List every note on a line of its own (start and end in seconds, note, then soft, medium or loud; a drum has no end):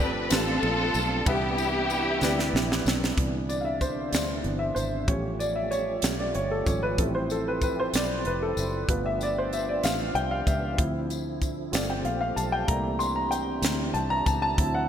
0.00 0.27 G1 loud
0.00 0.27 G2 medium
0.00 1.23 F3 medium
0.00 1.24 A3 medium
0.00 0.17 C4 medium
0.00 0.29 C4 medium
0.00 0.29 D4 medium
0.00 3.13 D4 medium
0.00 0.17 F4 medium
0.00 0.17 G4 medium
0.00 1.23 G4 medium
0.00 0.17 A4 medium
0.00 0.32 B4 loud
0.00 0.21 D5 medium
0.30 0.61 A1 medium
0.30 1.12 C4 medium
0.30 1.24 C4 medium
0.30 1.12 F4 medium
0.30 1.24 F4 medium
0.30 1.12 G4 medium
0.30 1.13 A4 medium
0.30 1.13 B4 medium
0.30 snare loud
0.30 ride medium
0.30 tambourine medium
0.34 1.28 A4 loud
0.63 0.92 A#1 medium
0.63 ride soft
0.94 1.24 B1 medium
0.94 ride soft
0.94 tambourine medium
1.26 2.18 C2 medium
1.26 2.18 C3 medium
1.26 3.16 E3 medium
1.26 2.07 B3 medium
1.26 3.16 B3 medium
1.26 2.83 B3 medium
1.26 2.08 E4 medium
1.26 2.83 E4 medium
1.26 2.08 G4 medium
1.26 3.16 G4 medium
1.26 2.87 G4 loud
1.26 2.08 B4 medium
1.26 2.08 E5 medium
1.26 kick loud
1.26 ride medium
1.58 ride soft
1.58 tambourine soft
1.90 ride soft
1.90 tambourine soft
2.21 2.51 D2 medium
2.21 3.03 C3 medium
2.21 3.03 E4 medium
2.21 3.03 G4 medium
2.21 3.03 B4 medium
2.21 3.04 D5 medium
2.21 snare medium
2.21 tambourine medium
2.39 snare medium
2.53 2.83 A#1 medium
2.53 snare medium
2.72 snare medium
2.85 3.15 B1 medium
2.85 snare loud
2.85 tambourine medium
3.04 snare medium
3.17 4.08 C2 medium
3.17 5.06 C3 soft
3.17 5.06 D3 medium
3.17 3.59 E3 soft
3.17 5.06 E3 medium
3.17 5.06 G3 soft
3.17 3.60 B3 soft
3.17 3.60 D4 medium
3.17 5.06 D4 medium
3.17 5.06 D4 soft
3.17 5.06 E4 medium
3.17 kick medium
3.17 closed hi-hat medium
3.49 3.61 D5 medium
3.49 closed hi-hat soft
3.49 tambourine soft
3.61 3.65 F5 medium
3.65 3.81 E5 medium
3.81 4.14 C5 medium
3.81 kick medium
3.81 closed hi-hat soft
3.81 tambourine soft
4.12 4.42 D2 medium
4.12 4.61 D5 medium
4.12 snare medium
4.12 closed hi-hat medium
4.12 tambourine medium
4.43 4.73 G1 medium
4.43 4.72 E3 soft
4.43 4.72 B3 soft
4.43 4.73 D4 soft
4.43 closed hi-hat soft
4.59 4.76 E5 medium
4.75 5.05 G#1 medium
4.75 5.08 C5 medium
4.75 closed hi-hat soft
4.75 tambourine soft
5.08 5.99 A1 medium
5.08 5.50 F3 soft
5.08 8.86 F3 medium
5.08 6.97 G3 medium
5.08 5.50 G3 soft
5.08 6.96 A3 medium
5.08 6.97 A3 medium
5.08 6.97 C#4 medium
5.08 5.51 C#4 medium
5.08 6.97 C#4 medium
5.08 6.97 F4 medium
5.08 10.75 G4 medium
5.08 5.41 C#5 medium
5.08 kick loud
5.08 closed hi-hat medium
5.39 5.56 D5 medium
5.39 closed hi-hat soft
5.39 tambourine soft
5.56 5.72 E5 medium
5.71 6.20 C#5 medium
5.71 closed hi-hat soft
5.71 tambourine soft
6.02 6.32 B1 medium
6.02 snare medium
6.02 closed hi-hat loud
6.02 tambourine medium
6.19 6.36 D5 medium
6.35 6.64 G1 medium
6.35 6.40 C#5 medium
6.35 closed hi-hat soft
6.51 6.67 A4 medium
6.66 6.96 G#1 medium
6.66 6.95 F3 soft
6.66 6.95 G3 soft
6.66 6.95 C#4 soft
6.66 6.83 C#5 medium
6.66 kick medium
6.66 closed hi-hat soft
6.66 tambourine soft
6.83 6.97 B4 medium
6.98 7.90 A1 loud
6.98 8.85 F3 soft
6.98 8.87 F3 medium
6.98 8.85 G3 soft
6.98 10.75 G3 medium
6.98 8.87 C4 medium
6.98 8.85 C4 soft
6.98 8.87 C4 medium
6.98 8.87 E4 medium
6.98 8.85 E4 medium
6.98 8.87 E4 medium
6.98 7.04 A4 medium
6.98 kick medium
6.98 closed hi-hat medium
7.15 7.31 C5 medium
7.30 7.47 A4 medium
7.30 closed hi-hat soft
7.30 tambourine soft
7.48 7.62 B4 medium
7.61 7.77 B4 medium
7.61 kick medium
7.61 closed hi-hat soft
7.61 tambourine soft
7.80 7.95 C5 medium
7.93 8.23 B1 medium
7.93 8.27 D5 medium
7.93 snare medium
7.93 closed hi-hat loud
7.93 tambourine medium
8.25 8.55 F1 medium
8.25 8.31 B4 medium
8.25 closed hi-hat soft
8.42 8.71 A4 medium
8.57 8.86 F#1 medium
8.57 closed hi-hat soft
8.57 tambourine medium
8.88 9.80 G1 medium
8.88 12.65 F3 medium
8.88 9.31 A3 soft
8.88 9.31 B3 soft
8.88 10.78 B3 medium
8.88 10.78 B3 soft
8.88 10.77 D4 medium
8.88 11.72 D4 soft
8.88 9.31 F4 medium
8.88 10.78 F4 medium
8.88 9.04 B4 medium
8.88 kick loud
8.88 closed hi-hat medium
9.06 9.22 E5 medium
9.21 9.37 D5 medium
9.21 closed hi-hat soft
9.21 tambourine soft
9.38 9.54 C5 medium
9.53 9.69 E5 medium
9.53 closed hi-hat soft
9.53 tambourine soft
9.69 9.85 D5 medium
9.84 10.13 A1 medium
9.84 10.14 F5 medium
9.84 snare medium
9.84 closed hi-hat medium
9.84 tambourine medium
10.14 10.44 C2 medium
10.14 10.32 G5 medium
10.14 closed hi-hat soft
10.31 10.46 F5 medium
10.47 10.76 C#2 medium
10.47 10.77 E5 medium
10.47 kick medium
10.47 closed hi-hat soft
10.47 tambourine soft
10.77 11.70 D2 medium
10.77 11.73 D3 medium
10.77 11.69 F3 soft
10.77 11.73 F3 medium
10.77 11.69 C4 soft
10.77 12.67 C4 medium
10.77 11.73 C4 soft
10.77 11.69 E4 medium
10.77 11.73 E4 medium
10.77 kick loud
10.77 closed hi-hat medium
11.10 closed hi-hat soft
11.10 tambourine soft
11.42 kick medium
11.42 closed hi-hat soft
11.42 tambourine soft
11.72 12.03 G1 medium
11.72 12.64 A3 soft
11.72 12.68 A3 medium
11.72 12.64 C4 soft
11.72 12.67 C4 medium
11.72 12.64 F4 medium
11.72 12.69 F4 medium
11.72 12.68 G4 medium
11.72 11.90 D5 medium
11.72 snare medium
11.72 closed hi-hat loud
11.72 tambourine medium
11.90 12.06 G5 medium
12.04 12.34 A#1 medium
12.04 12.19 F5 medium
12.04 closed hi-hat soft
12.21 12.37 F5 medium
12.36 12.66 B1 medium
12.36 12.51 A5 medium
12.36 closed hi-hat medium
12.36 tambourine soft
12.52 12.69 G5 medium
12.67 13.59 C2 loud
12.67 14.89 E3 medium
12.67 13.59 A3 soft
12.67 13.59 A#3 soft
12.67 14.56 C4 medium
12.67 14.57 C4 medium
12.67 13.59 D4 soft
12.67 14.89 D4 medium
12.67 14.57 D4 medium
12.67 13.59 E4 medium
12.67 14.89 E4 medium
12.67 14.56 G4 medium
12.67 14.57 G4 medium
12.67 12.98 A#5 medium
12.67 kick loud
12.67 closed hi-hat medium
12.99 13.14 C6 medium
12.99 closed hi-hat soft
12.99 tambourine soft
13.16 13.21 A#5 medium
13.31 13.61 G5 medium
13.31 closed hi-hat medium
13.31 tambourine soft
13.62 13.92 D2 medium
13.62 snare medium
13.62 closed hi-hat medium
13.62 tambourine medium
13.94 14.24 C2 medium
13.94 14.11 A5 medium
13.94 closed hi-hat soft
14.10 14.27 A#5 loud
14.26 14.55 C#2 medium
14.26 14.41 A5 medium
14.26 kick medium
14.26 closed hi-hat medium
14.26 tambourine medium
14.42 14.75 A5 loud
14.57 14.89 D2 loud
14.57 14.89 F#3 soft
14.57 14.89 C4 soft
14.57 14.89 C4 medium
14.57 14.89 D4 medium
14.57 14.89 E4 medium
14.57 14.89 F#4 medium
14.57 kick loud
14.57 closed hi-hat medium
14.74 14.89 F#5 medium